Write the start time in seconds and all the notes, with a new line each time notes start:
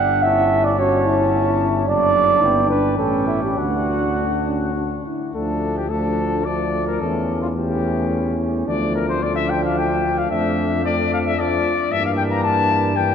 Already playing: G1 D4 E5 F#5
0.23 C#4 E4 E5 A5
0.64 D5
0.79 C#4 F#4 C#5 A5
1.06 E4
1.87 F#1 D4 D5 A5
2.41 G1 B3 E4 G5
2.69 D4 B4
2.97 A1 C#4 A4 G5
3.27 E4
3.43 G4
3.57 D2 D4 F#4 F#5
4.18 D4
4.47 C#4
4.77 D4
5.07 E4
5.34 D2 F3 A3 D4 A4
5.77 G4
5.90 F3 A3 D4 A4
6.45 F3 A3 D4 D5
6.87 A#4
7.00 E2 E3 A3 C#4 A4
7.41 F4
7.55 E3 A3 C#4 G4
8.66 D2 F3 A3 D4 D5
8.96 A#4
9.09 C5
9.22 F3 A3 D4 D5
9.36 E5
9.50 G5
9.64 F5
9.78 G5
10.18 F5
10.29 F2 F3 A3 D4 E5
10.84 F3 A3 D4 D5
11.13 F5
11.26 E5
11.37 F3 A3 D4 D5
11.90 G2 E3 A#3 D4 E5
12.05 F5
12.17 G5
12.31 A#5
12.44 A5
12.96 E3 A#3 D4 G5